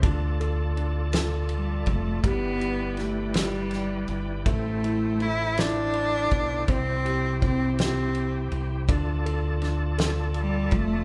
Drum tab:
RD |xxxxxx|xxxxxx|xxxxxx|xxxxxx|
SD |---o--|--ooo-|---o--|---o--|
BD |o----o|o-----|o----o|o-o---|

RD |xxxxxx|
SD |--oo--|
BD |o----o|